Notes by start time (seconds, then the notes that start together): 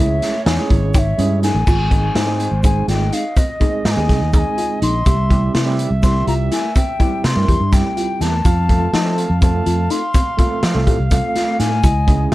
Already playing: C#2 G#3 C#4 E4 C#5 E5
0.00 G#4
0.22 snare, closed hi-hat
0.46 E2 D#4 G#5, snare, closed hi-hat, shaker
0.57 G#3 C#4 E4 G#4
0.70 G#1 E4, kick, closed hi-hat
0.94 D#4 G5, kick, closed hi-hat, shaker
0.99 E5
1.18 G2 G#3 C#4 E4 G#4, closed hi-hat
1.42 D#4 G#4 G#5, snare, closed hi-hat, shaker
1.54 A1
1.67 G#1 F4 G#4, kick, crash, shaker
1.90 G#3 C4 D#4 G#4, kick, closed hi-hat, shaker
2.15 G#2 D#4 C5, snare, closed hi-hat
2.26 G#3 C4 D#4 G#4
2.39 closed hi-hat, shaker
2.51 G#1
2.63 G#3 C4 D#4 G#4 G#5, kick, closed hi-hat, shaker
2.88 G#1 F4 D#5 G5, snare, closed hi-hat
3.12 D#4 F5, closed hi-hat, shaker
3.37 C4 D#5, kick, closed hi-hat, shaker
3.60 G#3 C4 D#4 G#4, kick, closed hi-hat, shaker
3.85 G#2 A#5, snare, closed hi-hat
3.91 G#5
3.96 D#2 G#3 C4 D#4 G#4
4.09 C2 G#4, kick, snare, closed hi-hat, shaker
4.21 D#2
4.33 G#3 C4 D#4 G#4 A#5, kick, closed hi-hat, shaker
4.39 G#5
4.58 F4, closed hi-hat
4.82 A#1 D#4 C6, closed hi-hat
5.06 C2 G4 E5, kick, closed hi-hat, shaker
5.30 G3 C4 E4 G4, kick, closed hi-hat, shaker
5.54 C3 E4 E5, snare, closed hi-hat
5.66 G3 C4 E4 G4
5.78 closed hi-hat, shaker
5.90 C2
6.02 G3 C4 E4 G4 C6, kick, snare, closed hi-hat, shaker
6.27 C2 F4 A#5, closed hi-hat
6.51 E4 G#5, snare, closed hi-hat, shaker
6.76 C4 G5, kick, closed hi-hat, shaker
6.99 G3 C4 E4 G4, kick, closed hi-hat, shaker
7.24 C3 C6, snare, closed hi-hat, shaker
7.35 G2 G3 C4 E4 A#4
7.48 E2 G4, kick, closed hi-hat
7.60 G2
7.72 G3 C4 E4 G4 G5, kick, snare, closed hi-hat, shaker
7.97 F4, closed hi-hat
8.20 E2 E4 A5, snare, closed hi-hat, shaker
8.45 F2 F4 F5, kick, closed hi-hat, shaker
8.68 A3 C4 F4 A4, kick, closed hi-hat
8.93 F3 D#4 D#5, snare, closed hi-hat
9.04 A3 C4 F4 A4
9.17 F5, closed hi-hat, shaker
9.29 F2
9.41 A3 C4 F4 A4 A5, kick, closed hi-hat, shaker
9.66 F2 F4, closed hi-hat
9.90 D#4 C6, closed hi-hat, shaker
10.14 C4, kick, closed hi-hat, shaker
10.37 A3 C4 F4 A4, kick, closed hi-hat, shaker
10.63 F3, snare, closed hi-hat
10.74 C2 A3 C4 F4 A4
10.87 A2 G4, kick, closed hi-hat, shaker
10.98 C2
11.10 A3 C4 F4 A4 F5, kick, closed hi-hat, shaker
11.36 F4, snare, closed hi-hat
11.59 A2 D#4 G#5, snare, closed hi-hat, shaker
11.83 C#2 E4 D#5, kick, closed hi-hat, shaker
12.07 G#3 C#4 E4 G#4, kick, closed hi-hat, shaker